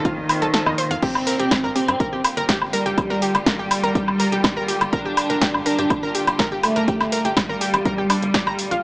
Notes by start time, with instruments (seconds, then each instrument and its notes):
Already playing: string section A#2 C3 F3 F4 C5, digital synth lead D#3, analog synth lead D#3
0.05 synth pluck F4 F5, kick, closed hi-hat
0.18 analog synth bass D#2
0.29 open hi-hat, low woodblock
0.42 analog synth bass C2, synth pluck A4 A5, closed hi-hat
0.54 synth pluck A4 A5, snare, closed hi-hat
0.66 analog synth bass F2, synth pluck D#4 D#5, low woodblock
0.78 synth pluck C5 C6, open hi-hat
0.91 analog synth bass F2, synth pluck F5 F6, closed hi-hat
1.02 string section D3 G3 F4 G4, analog synth lead C4, digital synth lead C4, synth pluck G4 G5, kick, closed hi-hat, crash
1.15 analog synth bass G1, low woodblock
1.27 synth pluck A#4 A#5, open hi-hat
1.40 analog synth bass F1, synth pluck G4 G5, closed hi-hat
1.51 kick, snare, closed hi-hat, low woodblock
1.64 analog synth bass G2, synth pluck A#4 A#5
1.75 analog synth lead C4, digital synth lead C4, synth pluck G4 G5, open hi-hat
1.88 analog synth bass G2, closed hi-hat, low woodblock
2.00 synth pluck A#4 A#5, kick, closed hi-hat
2.13 analog synth bass G1, synth pluck G4 G5
2.24 open hi-hat, low woodblock
2.37 analog synth bass G1, synth pluck A#4 A#5, closed hi-hat
2.49 synth pluck G4 G5, kick, snare, closed hi-hat
2.62 analog synth bass G1, low woodblock
2.73 digital synth lead G3, analog synth lead G3, synth pluck A#4 A#5, open hi-hat
2.86 analog synth bass G1, synth pluck G4 G5, closed hi-hat
2.98 kick, closed hi-hat, low woodblock
3.10 analog synth bass F1, synth pluck A#4 A#5, snare
3.22 synth pluck G4 G5, open hi-hat
3.35 analog synth bass G1, closed hi-hat, low woodblock
3.46 analog synth lead G3, digital synth lead G3, synth pluck A#4 A#5, kick, snare, closed hi-hat
3.59 analog synth bass A1, synth pluck G4 G5
3.71 open hi-hat, low woodblock
3.83 analog synth bass A1, synth pluck A#4 A#5, closed hi-hat
3.95 synth pluck G4 G5, kick, closed hi-hat
4.08 analog synth bass F1, low woodblock
4.20 synth pluck A#4 A#5, open hi-hat
4.32 analog synth bass F1, synth pluck G4 G5, closed hi-hat
4.44 kick, snare, closed hi-hat, low woodblock
4.57 analog synth bass G1, synth pluck A#4 A#5
4.68 synth pluck G4 G5, open hi-hat
4.81 analog synth bass G1, closed hi-hat, low woodblock
4.93 digital synth lead D4, analog synth lead D4, synth pluck A#4 A#5, kick, closed hi-hat
5.05 analog synth bass G1, synth pluck G4 G5
5.17 open hi-hat, low woodblock
5.30 analog synth bass F1, synth pluck A#4 A#5, closed hi-hat
5.42 synth pluck G4 G5, kick, snare, closed hi-hat
5.54 analog synth bass G2, low woodblock
5.66 analog synth lead D4, digital synth lead D4, synth pluck A#4 A#5, open hi-hat
5.79 analog synth bass G2, synth pluck G4 G5, closed hi-hat
5.90 kick, closed hi-hat, low woodblock
6.03 analog synth bass G1, synth pluck A#4 A#5
6.15 synth pluck G4 G5, open hi-hat
6.27 analog synth bass G1, closed hi-hat, low woodblock
6.39 synth pluck A#4 A#5, kick, snare, closed hi-hat
6.52 analog synth bass G1, synth pluck G4 G5
6.63 analog synth lead A3, digital synth lead A3, open hi-hat, low woodblock
6.76 analog synth bass G1, synth pluck A#4 A#5, closed hi-hat
6.88 synth pluck G4 G5, kick, closed hi-hat
7.01 analog synth bass F1, snare, low woodblock
7.12 synth pluck A#4 A#5, open hi-hat
7.25 analog synth bass G1, synth pluck G4 G5, closed hi-hat
7.37 analog synth lead G3, digital synth lead G3, kick, snare, closed hi-hat, low woodblock
7.49 analog synth bass A1, synth pluck A#4 A#5
7.61 synth pluck G4 G5, open hi-hat
7.74 analog synth bass A1, closed hi-hat, low woodblock
7.85 synth pluck A#4 A#5, kick, closed hi-hat
7.98 analog synth bass F1, synth pluck G4 G5
8.10 synth pluck D4 D5, open hi-hat, low woodblock
8.22 analog synth bass G1, closed hi-hat
8.34 synth pluck D5 D6, kick, snare, closed hi-hat
8.47 analog synth bass A#1, synth pluck A#5 A#6, low woodblock
8.59 open hi-hat
8.71 analog synth bass A#1, synth pluck F4 F5, closed hi-hat